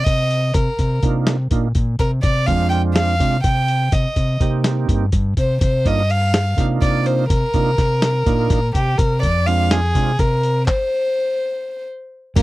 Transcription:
0.04 fingered electric bass C3, violin D#5, kick, closed hi-hat
0.31 closed hi-hat
0.54 fingered electric bass C3, violin A#4, kick, closed hi-hat
0.79 fingered electric bass C3, kick, closed hi-hat
1.03 fingered electric bass C3, tonewheel organ A#3 D4 D#4 F4, kick, closed hi-hat
1.27 snare, closed hi-hat
1.51 fingered electric bass A#2, tonewheel organ A#3 D4 D#4 F4, kick, closed hi-hat
1.75 fingered electric bass A#2, kick, closed hi-hat
1.99 fingered electric bass C3, violin A#4, kick, closed hi-hat
2.23 fingered electric bass C3, violin D5, kick, closed hi-hat
2.46 fingered electric bass F2, tonewheel organ G#3 C4 D4 F4, violin F5, kick, closed hi-hat
2.70 violin G5, closed hi-hat
2.95 violin F5, snare, closed hi-hat
3.20 fingered electric bass C3, tonewheel organ G#3 C4 D4 F4, kick, closed hi-hat
3.43 fingered electric bass C3, violin G5, kick, closed hi-hat
3.68 closed hi-hat
3.92 fingered electric bass C3, violin D#5, kick, closed hi-hat
4.16 fingered electric bass C3, kick, closed hi-hat
4.40 fingered electric bass C3, tonewheel organ A#3 C4 D#4 G4, kick, closed hi-hat
4.64 snare, closed hi-hat
4.88 fingered electric bass G2, tonewheel organ A#3 C4 D#4 G4, kick, closed hi-hat
5.12 fingered electric bass G2, kick, closed hi-hat
5.37 fingered electric bass C3, violin C5, kick, closed hi-hat
5.61 fingered electric bass C3, violin C5, kick, closed hi-hat
5.85 fingered electric bass G2, tonewheel organ A#3 D4 D#4 F4, violin D#5, kick, closed hi-hat
6.10 violin F5, closed hi-hat
6.34 snare, closed hi-hat
6.57 fingered electric bass C3, tonewheel organ A#3 D4 D#4 F4, kick, snare, closed hi-hat
6.82 fingered electric bass C3, violin D5, kick, closed hi-hat
7.06 violin C5, closed hi-hat
7.29 fingered electric bass C3, violin A#4, kick, closed hi-hat
7.54 fingered electric bass C3, tonewheel organ A#3 D4 D#4 F4, kick, closed hi-hat
7.78 fingered electric bass C3, kick, snare, closed hi-hat
8.02 snare, closed hi-hat
8.26 fingered electric bass A#2, tonewheel organ A#3 D4 D#4 F4, kick, closed hi-hat
8.50 fingered electric bass A#2, kick, snare, closed hi-hat
8.75 fingered electric bass C3, violin G4, kick, closed hi-hat
8.98 fingered electric bass C3, violin A#4, kick, closed hi-hat
9.22 fingered electric bass F2, violin D5, kick, closed hi-hat
9.46 tonewheel organ G#3 C4 D4 F4, violin F5, closed hi-hat
9.71 violin G#4, snare, closed hi-hat
9.94 fingered electric bass C3, tonewheel organ G#3 C4 D4 F4, kick, closed hi-hat
10.19 fingered electric bass C3, violin A#4, kick, closed hi-hat
10.43 closed hi-hat
10.68 violin C5, kick, clap
12.36 fingered electric bass G2, tonewheel organ G3 A#3 D4 F4, trombone A#3, violin A#4, kick, closed hi-hat, crash

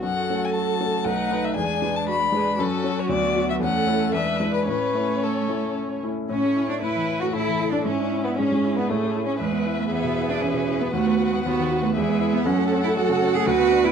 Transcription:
Already playing: violin F#4
0.02 grand piano F#2, cello F#3, viola A4, violin F#5
0.30 grand piano A3 C#4 A4
0.45 violin G#5
0.55 violin A5
0.80 grand piano A3 C#4 A4
1.05 grand piano B1, cello A3, violin D#4 F#5, viola B4
1.30 grand piano A3 D#4 B4
1.44 violin E5
1.56 grand piano E2, cello G#3, violin D4 G#5, viola G#4
1.82 grand piano G#3 D4 B4
1.96 violin A5
2.07 viola F#4, violin B5
2.32 grand piano G#3 D4 B4, viola G#4
2.58 grand piano F#2, cello F#3, violin C#4 A4, viola F#4
2.83 grand piano F#3 C#4 F#4
2.99 violin C#5
3.09 grand piano D2, violin B3 D5
3.36 grand piano F#3 B3 F#4
3.50 violin E5
3.60 grand piano E2, cello A3, violin C#4 F#5, viola A4
3.87 grand piano A3 C#4 E4
4.13 grand piano E2, cello G#3, violin D4 E5, viola B4
4.40 grand piano G#3 D4 E4
4.54 violin B4
4.67 grand piano A2, cello A3, violin C#4 B4, viola C#5
4.95 grand piano A3 C#4 E4
5.23 violin A4
5.48 grand piano A3 C#4 E4
6.03 grand piano A3 C#4 E4
6.29 grand piano A2, cello C#4, violin C#4, viola C#5
6.44 grand piano A3
6.56 grand piano E4
6.69 grand piano A3, cello D4, violin D4
6.81 grand piano A2, cello E4, violin E4, viola B4
6.96 grand piano E3
7.08 grand piano E4
7.20 grand piano A3, violin F#4, cello F#4
7.33 grand piano A2, cello E4, violin E4, viola A4
7.47 grand piano E3
7.60 grand piano E4
7.71 grand piano A3, cello D4, violin D4
7.85 grand piano G#2, cello C#4, violin C#4, viola E4
7.99 grand piano D4
8.13 grand piano E4
8.24 violin B3, cello B3, grand piano D4
8.35 grand piano G#2, violin C#4, cello C#4, viola G#4
8.52 grand piano G#3
8.64 grand piano E4
8.75 violin B3, cello B3, grand piano D4
8.88 grand piano A2, cello A3, violin A3
9.03 grand piano C#4
9.15 grand piano E4
9.26 violin C#4, grand piano C#4, cello C#4
9.39 grand piano E2, cello G#3, violin B4 E5, viola B4
9.52 grand piano B3
9.66 grand piano E4
9.79 cello A3, grand piano B3
9.90 grand piano E2, cello B3, viola G#4
10.04 grand piano B2
10.16 grand piano E4
10.29 grand piano B3, cello D4
10.41 grand piano E2, cello C#4
10.54 grand piano B2
10.67 grand piano E4
10.81 grand piano B3, cello B3
10.92 grand piano D#2, cello A3, viola F#4, violin F#5
11.06 grand piano B3
11.20 grand piano F#4
11.33 cello G#3, grand piano B3
11.44 grand piano D#2, cello B3, viola F#4
11.59 grand piano D#3
11.70 grand piano F#4
11.82 cello A3, grand piano B3
11.95 grand piano E2, cello G#3, viola G#4, violin E5
12.09 grand piano B3
12.20 grand piano E4
12.33 grand piano B3, cello B3
12.45 grand piano F#2, cello C#4, viola A4, violin A4 F#5
12.59 grand piano A3
12.71 grand piano C#4
12.84 grand piano A3, cello E4
12.96 grand piano F#2, cello F#4
13.09 grand piano C#3
13.22 grand piano C#4
13.34 grand piano A3, cello G#4
13.46 grand piano D2, cello F#4, viola B4, violin B4
13.60 grand piano B3
13.72 grand piano D4
13.84 grand piano B3, cello E4

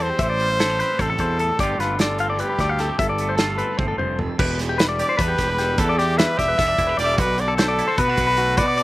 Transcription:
Already playing: fingered electric bass E2, clean electric guitar E2 E3 G3 G4
0.00 clean electric guitar C4, trumpet C5
0.10 clean electric guitar G4
0.19 fingered electric bass A1, clean electric guitar A2 E5, kick, closed hi-hat
0.23 trumpet C5
0.30 clean electric guitar D5
0.40 clean electric guitar G3, closed hi-hat
0.50 clean electric guitar C5
0.59 clean electric guitar E4 A4, snare, closed hi-hat
0.70 clean electric guitar G4
0.79 clean electric guitar C4 B4, closed hi-hat
0.99 fingered electric bass A1, clean electric guitar C3 C5, trumpet A4, kick, closed hi-hat
1.10 clean electric guitar A4
1.18 fingered electric bass E2, clean electric guitar B2 C5, kick, closed hi-hat
1.39 clean electric guitar A2 A4, closed hi-hat
1.59 fingered electric bass G1, clean electric guitar G2 D3 A3 C4 D5, trumpet G4, kick, closed hi-hat
1.63 clean electric guitar F4
1.79 fingered electric bass G1, clean electric guitar A3 B4, trumpet F4, snare, closed hi-hat
1.98 clean electric guitar F4 D5, trumpet A4, snare, closed hi-hat
2.18 clean electric guitar C4 F5, closed hi-hat
2.30 clean electric guitar D5
2.37 clean electric guitar G2 B4, trumpet G4, closed hi-hat
2.49 clean electric guitar B4
2.58 fingered electric bass D2, clean electric guitar A3 D5, kick, snare, closed hi-hat
2.69 clean electric guitar F5
2.79 clean electric guitar C4 A4, snare, closed hi-hat
2.89 clean electric guitar G4
2.99 fingered electric bass G1, clean electric guitar G2 E5, trumpet A4, kick, closed hi-hat
3.09 clean electric guitar D5
3.18 clean electric guitar A3, closed hi-hat
3.29 clean electric guitar C5
3.37 clean electric guitar F4 A4, snare, closed hi-hat
3.58 clean electric guitar C4 B4, closed hi-hat
3.77 fingered electric bass G1, clean electric guitar A2 C5, kick, high tom
3.88 clean electric guitar A4
3.98 fingered electric bass F1, clean electric guitar G2 C5, mid tom
4.19 clean electric guitar F2 A4, floor tom
4.38 fingered electric bass E1, clean electric guitar E2 G4 B4, kick, crash
4.59 clean electric guitar E3, snare, closed hi-hat
4.69 clean electric guitar G4
4.78 clean electric guitar G3 B4, snare, closed hi-hat
4.89 clean electric guitar D5
4.99 clean electric guitar G4, trumpet D5, closed hi-hat
5.09 clean electric guitar C5
5.17 fingered electric bass E2, clean electric guitar D4 B4, trumpet B4, kick, closed hi-hat
5.28 clean electric guitar G4
5.38 fingered electric bass E1, clean electric guitar G4, kick, snare, closed hi-hat
5.48 clean electric guitar B4
5.58 clean electric guitar G3 G4, snare, closed hi-hat
5.78 clean electric guitar E2 G4 B4, fingered electric bass E2, trumpet A4, kick, closed hi-hat
5.89 clean electric guitar D5
5.98 clean electric guitar E3 D5, trumpet G4, snare, closed hi-hat
6.17 clean electric guitar G3 E5, trumpet B4, snare, closed hi-hat
6.38 fingered electric bass E1, clean electric guitar G4 D5, trumpet E5, kick, snare, closed hi-hat
6.48 clean electric guitar B4
6.58 fingered electric bass E1, clean electric guitar B3 E5, kick, snare, closed hi-hat
6.67 clean electric guitar D4 D5
6.78 fingered electric bass E1, clean electric guitar E4, kick, closed hi-hat
6.87 clean electric guitar G4 B4
6.97 fingered electric bass E1, clean electric guitar G3 D5, trumpet D5, snare, closed hi-hat
7.05 clean electric guitar E5
7.17 fingered electric bass B1, clean electric guitar B2 F#4 D5, trumpet B4, kick, closed hi-hat
7.38 clean electric guitar D3, trumpet D5, closed hi-hat
7.48 clean electric guitar A4
7.56 trumpet A4, clean electric guitar C5, snare, closed hi-hat
7.60 clean electric guitar A3
7.68 clean electric guitar D5
7.79 clean electric guitar E4, closed hi-hat
7.88 clean electric guitar F#4 C5
7.98 fingered electric bass B2, clean electric guitar B3 B4, trumpet B4, kick, closed hi-hat
8.08 clean electric guitar D4 F#4
8.17 fingered electric bass B1, clean electric guitar F#4, kick, closed hi-hat
8.27 clean electric guitar B4
8.37 clean electric guitar A3 F#4, closed hi-hat
8.57 fingered electric bass B2, clean electric guitar B2 F#4 B4, trumpet D5, kick, closed hi-hat
8.68 clean electric guitar D5
8.77 clean electric guitar D3 D5, closed hi-hat

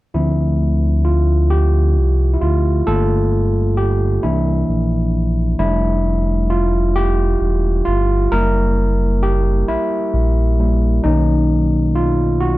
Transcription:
0.14 analog synth bass D2, tine electric piano F3 C4 E4
1.05 tine electric piano F4
1.50 tine electric piano G4
1.97 analog synth bass C2
2.34 tine electric piano E4
2.41 analog synth bass D2, tine electric piano F4
2.87 analog synth bass G1, tine electric piano A3 A#3 F4 A4
3.77 tine electric piano G4
4.23 analog synth bass C2, tine electric piano E3 A#3 D4 E4
4.69 analog synth bass A#1
5.59 analog synth bass F1, tine electric piano G3 A3 D4 E4
6.50 tine electric piano F4
6.96 tine electric piano G4
7.41 analog synth bass E1
7.85 analog synth bass G1, tine electric piano F4
8.32 analog synth bass F#1, tine electric piano G3 A#3 E4 A#4
9.23 tine electric piano G4
9.68 analog synth bass A#1, tine electric piano E4
10.14 analog synth bass A#1
10.59 tine electric piano G3 A#3 E4
11.04 analog synth bass B1, tine electric piano D#3 A#3 C#4 D#4
11.95 tine electric piano F4
12.40 tine electric piano F#4

